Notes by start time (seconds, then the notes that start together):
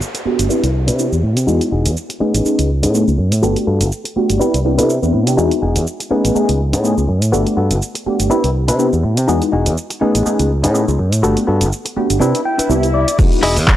Already playing: downlifter
0.02 cabasa
0.14 muted clean electric guitar stroke, closed hi-hat, cabasa
0.25 A3 B3 D4 F#4 G4, muted fingered electric bass stroke
0.39 G1, closed hi-hat, cabasa
0.49 B3 C4 D4 E4 G4 B4, cabasa
0.63 C2, closed hi-hat, cabasa
0.87 C3 D4 E4 B4, closed hi-hat, cabasa
0.98 B3 C4 D4 E4 G4, cabasa
1.12 E2, cabasa
1.23 A2, muted clean electric guitar stroke
1.37 C3, closed hi-hat, cabasa
1.47 E2 G#3 B3 D#4 E4 F#4 G#4, cabasa
1.61 closed hi-hat, cabasa
1.71 E1 D#4 F#4 G#4
1.85 E2, closed hi-hat, cabasa
1.97 cabasa
2.09 muted clean electric guitar stroke, closed hi-hat, cabasa
2.20 A3 B3 C#4 D#4 G#4 B4, muted fingered electric bass stroke
2.34 A1, closed hi-hat, cabasa
2.45 A3 B3 C#4 D#4 G#4, cabasa
2.59 C#2, closed hi-hat, cabasa
2.83 A2 B3 C#4 D#4 G#4, closed hi-hat, cabasa
2.94 A3 B3 C#4 D#4 G#4, cabasa
3.08 C#2, cabasa
3.18 F#2, muted clean electric guitar stroke
3.32 A2, closed hi-hat, cabasa
3.43 G1 A3 B3 D4 F#4 G4 A4, cabasa
3.56 closed hi-hat, cabasa
3.67 G2 B3 F#4 A4
3.80 G1, closed hi-hat, cabasa
3.92 cabasa
4.04 muted clean electric guitar stroke, closed hi-hat, cabasa
4.16 A3 B3 D4 F#4 G4, muted fingered electric bass stroke
4.30 G1, closed hi-hat, cabasa
4.39 B3 C4 D4 E4 G4 B4, cabasa
4.54 C2, closed hi-hat, cabasa
4.65 B3 C4 D4 E4 G4
4.77 C3 B3 C4 D4 E4 A4 B4, closed hi-hat, cabasa
4.90 cabasa
5.02 E2 B3 C4 D4 E4 B4, cabasa
5.13 A2, muted clean electric guitar stroke
5.27 C3 B3 C4 D4 E4 G4, closed hi-hat, cabasa
5.37 E2 G#3 B3 D#4 E4 F#4 G#4, cabasa
5.51 closed hi-hat, cabasa
5.62 E1 D#4 F#4 G#4
5.76 E2, closed hi-hat, cabasa
5.87 cabasa
6.00 muted clean electric guitar stroke, closed hi-hat, cabasa
6.11 A3 B3 C#4 D#4 G#4 B4, muted fingered electric bass stroke
6.25 A1, closed hi-hat, cabasa
6.35 A3 B3 C#4 D#4 G#4, cabasa
6.49 C#2, closed hi-hat, cabasa
6.73 A2 B3 C#4 D#4 G#4, closed hi-hat, cabasa
6.84 A3 B3 C#4 D#4 G#4, cabasa
6.98 C#2, cabasa
7.08 F#2, muted clean electric guitar stroke
7.22 A2, closed hi-hat, cabasa
7.32 G1 A3 B3 D4 F#4 G4 A4, cabasa
7.47 closed hi-hat, cabasa
7.57 G2 B3 F#4 A4
7.71 G1, closed hi-hat, cabasa
7.82 cabasa
7.95 muted clean electric guitar stroke, closed hi-hat, cabasa
8.06 A3 B3 D4 F#4 G4, muted fingered electric bass stroke
8.20 G1, closed hi-hat, cabasa
8.30 B3 C4 D4 E4 G4 B4, cabasa
8.44 C2, closed hi-hat, cabasa
8.68 C3 D4 E4 B4, closed hi-hat, cabasa
8.79 B3 C4 D4 E4 G4, cabasa
8.93 E2, cabasa
9.03 A2, muted clean electric guitar stroke
9.17 C3, closed hi-hat, cabasa
9.28 E2 G#3 B3 D#4 E4 F#4 G#4, cabasa
9.42 closed hi-hat, cabasa
9.52 E1 D#4 F#4 G#4
9.66 E2, closed hi-hat, cabasa
9.77 cabasa
9.90 muted clean electric guitar stroke, closed hi-hat, cabasa
10.01 A3 B3 C#4 D#4 G#4 B4, muted fingered electric bass stroke
10.15 A1, closed hi-hat, cabasa
10.25 A3 B3 C#4 D#4 G#4, cabasa
10.39 C#2, closed hi-hat, cabasa
10.63 A2 B3 C#4 D#4 G#4, closed hi-hat, cabasa
10.74 A3 B3 C#4 D#4 G#4, cabasa
10.88 C#2, cabasa
10.98 F#2, muted clean electric guitar stroke
11.12 A2, closed hi-hat, cabasa
11.23 G1 A3 B3 D4 F#4 G4 A4, cabasa
11.37 closed hi-hat, cabasa
11.47 G2 B3 F#4 A4
11.61 G1, closed hi-hat, cabasa
11.72 cabasa
11.85 muted clean electric guitar stroke, closed hi-hat, cabasa
11.96 A3 B3 D4 F#4 G4, muted fingered electric bass stroke
12.10 G1, closed hi-hat, cabasa
12.20 C3 B3 C4 D4 E4 G4 B4, swell, cabasa
12.35 closed hi-hat, cabasa
12.45 G5
12.58 D4 E4 B4, muted fingered electric bass stroke, closed hi-hat, cabasa
12.69 C2 B3 C4 D4 E4 G4 E5, cabasa
12.83 closed hi-hat, cabasa
12.94 D5, muted clean electric guitar stroke
13.08 closed hi-hat, cabasa
13.18 E2 G#3 B3 D#4 E4 F#4, kick, crash, cabasa
13.32 closed hi-hat, cabasa
13.43 E1 E4 F#4 G#4 D#5, open hi-hat
13.56 E2, open hi-hat, cabasa
13.67 muted clean electric guitar stroke, kick, clap, cabasa